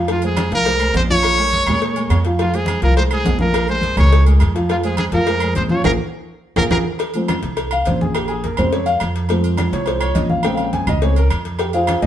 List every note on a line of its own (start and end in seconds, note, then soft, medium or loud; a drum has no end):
0.00 0.46 F2 loud
0.08 0.20 F3 medium
0.08 0.21 F4 medium
0.08 0.23 F4 medium
0.08 0.21 F5 medium
0.08 cowbell loud
0.08 high conga soft
0.08 low agogo medium
0.22 0.47 G#3 medium
0.22 0.47 G#4 medium
0.22 0.47 C5 medium
0.22 high conga soft
0.22 low agogo medium
0.26 0.51 G#4 medium
0.37 cowbell medium
0.37 high conga loud
0.37 low agogo loud
0.37 claves medium
0.51 0.91 C2 medium
0.51 0.64 F3 medium
0.51 0.64 F4 medium
0.51 0.93 A#4 loud
0.51 0.64 F5 medium
0.51 cowbell medium
0.51 high conga soft
0.65 0.78 G#3 medium
0.65 0.78 G#4 medium
0.65 0.78 C5 medium
0.65 cowbell loud
0.65 high conga soft
0.65 low agogo medium
0.80 1.04 G#3 medium
0.80 1.04 G#4 medium
0.80 1.05 C5 medium
0.80 high conga soft
0.80 low agogo loud
0.80 claves medium
0.94 1.61 A#1 medium
0.94 1.03 C5 loud
0.94 cowbell medium
0.94 high conga medium
0.94 low timbale medium
0.94 low agogo medium
1.10 1.33 F3 medium
1.10 1.33 F4 medium
1.10 2.21 C#5 loud
1.10 1.34 F5 medium
1.10 high conga medium
1.23 cowbell loud
1.23 low agogo loud
1.23 claves medium
1.38 1.62 G#3 medium
1.38 1.62 G#4 medium
1.38 1.63 A#4 medium
1.38 high conga soft
1.38 low agogo medium
1.53 cowbell medium
1.53 high conga medium
1.67 2.07 A#2 loud
1.67 1.91 G#3 medium
1.67 1.91 G#4 medium
1.67 1.91 A#4 medium
1.67 high conga soft
1.67 low conga medium
1.67 low agogo loud
1.67 claves medium
1.82 cowbell loud
1.82 high conga soft
1.96 2.20 G#3 medium
1.96 2.20 G#4 medium
1.96 2.20 A#4 medium
1.96 high conga soft
1.96 low agogo medium
2.10 2.76 F2 loud
2.10 cowbell medium
2.10 high conga soft
2.10 low timbale medium
2.10 low agogo loud
2.10 claves medium
2.25 2.37 F3 medium
2.25 2.37 F4 medium
2.25 2.37 F5 medium
2.25 cowbell medium
2.25 high conga soft
2.39 2.51 F3 medium
2.39 2.52 F4 medium
2.39 2.57 F4 medium
2.39 2.52 F5 medium
2.39 cowbell loud
2.39 high conga soft
2.39 low agogo medium
2.53 2.77 G#3 medium
2.53 2.78 G#4 medium
2.53 2.83 G#4 medium
2.53 2.78 C5 medium
2.53 high conga soft
2.53 low agogo medium
2.66 cowbell medium
2.66 high conga loud
2.66 low agogo loud
2.66 claves medium
2.82 3.22 C2 medium
2.82 2.94 F3 medium
2.82 2.94 F4 loud
2.82 2.96 A#4 medium
2.82 2.94 F5 medium
2.82 cowbell medium
2.82 high conga soft
2.97 3.09 G#3 medium
2.97 3.09 G#4 medium
2.97 3.03 C5 loud
2.97 3.09 C5 medium
2.97 cowbell loud
2.97 high conga soft
2.97 low agogo medium
3.11 3.35 G#3 medium
3.11 3.39 G#4 loud
3.11 3.36 G#4 medium
3.11 3.36 C5 medium
3.11 high conga soft
3.11 low agogo loud
3.11 claves medium
3.25 3.92 A#1 medium
3.25 cowbell medium
3.25 high conga medium
3.25 low timbale medium
3.25 low agogo medium
3.39 3.64 F3 medium
3.39 3.64 F4 medium
3.39 3.67 A#4 medium
3.39 3.64 F5 medium
3.39 high conga medium
3.53 cowbell loud
3.53 high conga soft
3.53 low agogo loud
3.53 claves medium
3.68 3.93 G#3 medium
3.68 3.93 G#4 medium
3.68 3.93 A#4 medium
3.68 3.96 C5 loud
3.68 high conga soft
3.68 low agogo medium
3.82 cowbell medium
3.82 high conga medium
3.97 4.37 C#2 loud
3.97 4.21 G#3 medium
3.97 4.21 G#4 medium
3.97 4.21 A#4 medium
3.97 4.25 C#5 loud
3.97 high conga soft
3.97 low conga medium
3.97 low agogo loud
3.97 claves medium
4.12 cowbell loud
4.12 high conga soft
4.26 4.50 G#3 medium
4.26 4.50 G#4 medium
4.26 4.50 A#4 medium
4.26 high conga soft
4.26 low agogo medium
4.40 5.08 F2 loud
4.40 cowbell medium
4.40 high conga soft
4.40 low agogo loud
4.40 claves medium
4.55 4.67 F3 medium
4.55 4.67 F4 medium
4.55 4.67 F5 medium
4.55 cowbell medium
4.55 high conga soft
4.69 4.81 F3 medium
4.69 4.82 F4 medium
4.69 4.77 F4 medium
4.69 4.82 F5 medium
4.69 cowbell loud
4.69 high conga soft
4.69 low agogo medium
4.84 5.08 G#3 medium
4.84 5.08 G#4 medium
4.84 4.98 G#4 medium
4.84 5.08 C5 medium
4.84 high conga soft
4.84 low agogo medium
4.97 5.05 G#4 medium
4.97 cowbell medium
4.97 high conga loud
4.97 low agogo loud
4.97 claves medium
5.12 5.53 F2 loud
5.12 5.25 F3 medium
5.12 5.25 F4 loud
5.12 5.54 A#4 loud
5.12 5.25 F5 medium
5.12 cowbell medium
5.12 high conga soft
5.27 5.39 G#3 medium
5.27 5.40 G#4 medium
5.27 5.40 C5 medium
5.27 cowbell loud
5.27 high conga soft
5.27 low agogo medium
5.40 5.66 G#3 medium
5.40 5.66 G#4 medium
5.40 5.66 C5 medium
5.40 high conga soft
5.40 low agogo loud
5.40 claves medium
5.55 5.83 A#1 medium
5.55 5.63 C5 loud
5.55 cowbell medium
5.55 high conga medium
5.55 low agogo medium
5.69 5.82 F3 medium
5.69 5.82 F4 medium
5.69 5.84 C#5 loud
5.69 5.82 F5 medium
5.69 high conga medium
5.84 5.95 A#1 loud
5.84 5.94 F4 loud
5.84 5.94 G#4 loud
5.84 5.92 A#4 loud
5.84 5.94 A#4 loud
5.84 cowbell loud
5.84 high conga loud
5.84 high timbale medium
5.84 claves loud
6.56 6.67 A#1 loud
6.56 6.66 F4 loud
6.56 6.66 G#4 loud
6.56 6.64 A#4 medium
6.56 6.66 A#4 loud
6.56 cowbell loud
6.56 high conga loud
6.56 high timbale loud
6.56 claves loud
6.70 6.81 A#1 loud
6.70 6.81 F4 medium
6.70 6.81 G#4 medium
6.70 6.78 A#4 medium
6.70 6.81 A#4 medium
6.70 cowbell loud
6.70 high conga loud
6.70 high timbale loud
6.70 claves loud
6.99 cowbell loud
6.99 high conga soft
6.99 low agogo medium
7.14 7.34 F3 medium
7.14 7.34 G#3 medium
7.14 7.34 C4 medium
7.14 high conga soft
7.14 low agogo medium
7.28 cowbell medium
7.28 high conga loud
7.28 low agogo loud
7.28 claves medium
7.42 7.83 C2 medium
7.42 cowbell medium
7.42 high conga soft
7.57 cowbell loud
7.57 high conga soft
7.57 low agogo medium
7.71 7.86 F5 loud
7.71 high conga soft
7.71 low agogo loud
7.71 claves medium
7.85 8.53 A#1 medium
7.85 8.00 C5 medium
7.85 cowbell medium
7.85 high conga medium
7.85 low agogo medium
8.01 8.15 G#4 medium
8.01 high conga medium
8.15 8.29 G4 medium
8.15 cowbell loud
8.15 high conga soft
8.15 low agogo loud
8.15 claves medium
8.28 8.43 G#4 medium
8.28 high conga soft
8.28 low agogo medium
8.44 8.58 A#4 medium
8.44 cowbell medium
8.44 high conga medium
8.57 8.98 F2 medium
8.57 8.77 C#3 medium
8.57 8.77 G#3 medium
8.57 8.78 C4 medium
8.57 8.72 C5 medium
8.57 high conga soft
8.57 low conga medium
8.57 low agogo loud
8.57 claves medium
8.73 8.86 C#5 medium
8.73 cowbell loud
8.73 high conga soft
8.86 8.95 F5 loud
8.86 high conga soft
8.86 low agogo medium
9.00 9.67 F2 medium
9.00 cowbell medium
9.00 high conga soft
9.00 low agogo loud
9.00 claves medium
9.16 cowbell medium
9.16 high conga soft
9.29 10.40 F3 medium
9.29 10.41 G#3 medium
9.29 10.41 C4 medium
9.29 cowbell loud
9.29 high conga soft
9.29 low agogo medium
9.44 high conga soft
9.44 low agogo medium
9.57 cowbell medium
9.57 high conga loud
9.57 low agogo loud
9.57 claves medium
9.72 10.13 C2 loud
9.72 9.87 C#5 medium
9.72 cowbell medium
9.72 high conga soft
9.86 10.01 C5 medium
9.86 cowbell loud
9.86 high conga soft
9.86 low agogo medium
10.01 10.15 C#5 loud
10.01 high conga soft
10.01 low agogo loud
10.01 claves medium
10.15 10.82 A#1 medium
10.15 10.29 D#5 medium
10.15 cowbell medium
10.15 high conga medium
10.15 low agogo medium
10.30 10.44 F5 medium
10.30 high conga medium
10.43 10.85 C#3 medium
10.43 10.86 G#3 medium
10.43 10.86 C4 medium
10.43 10.54 G5 loud
10.43 cowbell loud
10.43 high conga soft
10.43 low agogo loud
10.43 claves medium
10.55 10.64 F5 medium
10.55 low agogo medium
10.59 high conga soft
10.64 10.73 G5 medium
10.73 10.87 G#5 loud
10.73 cowbell medium
10.73 high conga medium
10.87 11.27 C#2 loud
10.87 11.02 D#5 medium
10.87 high conga soft
10.87 low conga medium
10.87 low agogo loud
10.87 claves medium
11.01 11.15 C#3 medium
11.01 11.15 G#3 soft
11.01 11.16 C4 medium
11.01 11.16 C#5 medium
11.01 cowbell loud
11.01 high conga soft
11.16 11.26 A#4 medium
11.16 high conga soft
11.16 low agogo medium
11.30 11.97 F2 medium
11.30 cowbell medium
11.30 high conga soft
11.30 low agogo loud
11.30 claves medium
11.45 cowbell medium
11.45 high conga soft
11.59 11.74 G4 medium
11.59 11.74 G5 medium
11.59 cowbell loud
11.59 high conga soft
11.59 low agogo medium
11.73 12.01 F4 medium
11.73 12.01 G#4 medium
11.73 12.01 C5 medium
11.73 12.01 F5 medium
11.73 high conga soft
11.73 low agogo medium
11.87 cowbell medium
11.87 high conga loud
11.87 low agogo loud
11.87 claves medium
12.02 12.06 F2 medium
12.02 12.06 F3 medium
12.02 12.06 G#3 medium
12.02 12.06 C4 medium
12.02 12.06 D#4 medium
12.02 12.06 D#5 loud
12.02 cowbell medium
12.02 high conga soft